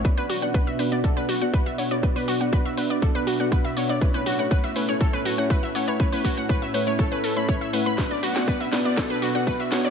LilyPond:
<<
  \new Staff \with { instrumentName = "Synth pluck" } { \time 4/4 \key b \minor \tempo 4 = 121 b'16 b'16 fis'16 fis''16 b'16 e''16 b'16 d''16 a'16 b'16 fis'16 fis''16 b'16 e''16 cis''16 d''16 | b'16 b'16 fis'16 fis''16 b'16 e''16 b'16 d''16 a'16 b'16 fis'16 fis''16 b'16 e''16 cis''16 d''16 | b'16 b'16 fis'16 fis''16 b'16 e''16 b'16 cis''16 a'16 b'16 fis'16 fis''16 b'16 e''16 cis''16 cis''16 | b'16 b'16 fis'16 fis''16 b'16 e''16 b'16 cis''16 a'16 b'16 a'16 b''16 cis''16 e''16 b'16 b''16 |
b'16 d''16 fis'16 fis''16 b'16 e''16 b'16 d''16 a'16 b'16 fis'16 fis''16 b'16 e''16 cis''16 d''16 | }
  \new Staff \with { instrumentName = "Synth stab" } { \time 4/4 \key b \minor <d' fis' d''>16 <b d' fis' d''>8 <b d' fis' d''>16 d'16 r16 <b d' fis' d''>16 <b d' fis' d''>16 <d' fis' d''>16 <b d' fis' d''>16 r16 <b d' fis' d''>16 d'8 <b d' fis' fis''>16 <b d' fis' cis''>16 | <b d' fis' d''>16 <b d' fis' d''>8 <b d' fis' d''>16 r8 <b d' fis' d''>16 <b d' fis' d''>16 <b d' fis' d''>16 <b d' fis' d''>16 r16 <b d' fis' d''>16 <b fis' e''>8 <b d' fis' fis''>16 <b d' fis' cis''>16 | <a cis' e' cis''>16 <a cis' e' cis''>8 <a cis' e' cis''>16 e'16 r16 <a cis' e' cis''>16 <a cis' e' cis''>16 <a cis' e' cis''>16 <a cis' e' cis''>16 r16 <a cis' e' cis''>16 <a cis' e' e''>8 <a cis' e' fis''>16 <a cis' e' b'>16 | <a cis' e' cis''>16 <a cis' e' cis''>8 <a cis' e' cis''>16 <a cis' e' cis''>16 r16 <a cis' e' cis''>16 <a cis' e' cis''>16 <a cis' cis''>16 <a cis' e' cis''>16 r16 <a cis' e' cis''>16 <a e' e''>8 <a cis' e' fis''>16 <a cis' e' b'>16 |
<b d' fis' d''>16 <b d' fis' d''>8 <b d' fis' d''>16 <b d' fis' d''>16 r16 <b d' fis' d''>16 <b d' fis' d''>16 <d' fis' d''>16 <b d' fis' d''>16 r16 <b d' fis' d''>16 <d' e''>8 <b d' fis' fis''>16 <b d' fis' cis''>16 | }
  \new Staff \with { instrumentName = "Ambient pad" } { \time 4/4 \key b \minor << { fis''1 | e''1~ | e''1~ | e''1 |
fis''1 | } \\ { <b, b d' fis'>1~ | <b, b d' fis'>1 | <a, a cis' e'>1~ | <a, a cis' e'>1 |
<b, b d' fis'>1 | } >> }
  \new DrumStaff \with { instrumentName = "Drums" } \drummode { \time 4/4 <hh bd>16 hh16 hho16 hh16 <hh bd>16 hh16 hho16 hh16 <hh bd>16 hh16 hho16 hh16 <hh bd>16 hh16 hho16 hh16 | <hh bd>16 hho16 hho16 hh16 <hh bd>16 hh16 hho16 hh16 <hh bd>16 hh16 hho16 hh16 <hh bd>16 hh16 hho16 hh16 | <hh bd>16 hh16 hho16 hh16 <hh bd>16 hh16 hho16 hh16 <hh bd>16 hh16 hho16 hh16 <hh bd>16 hh16 hho16 hh16 | <hh bd>16 hho16 <hho bd>16 hh16 <hh bd>16 hh16 hho16 hh16 <hh bd>16 hh16 hho16 hh16 <hh bd>16 hh16 hho16 hh16 |
<hh bd sn>16 hh16 hho16 <hh sn>16 <hh bd>16 hh16 <hho sn>16 hh16 <hh bd sn>16 hh16 hho16 hh16 <hh bd>16 hh16 <hho sn>16 hh16 | }
>>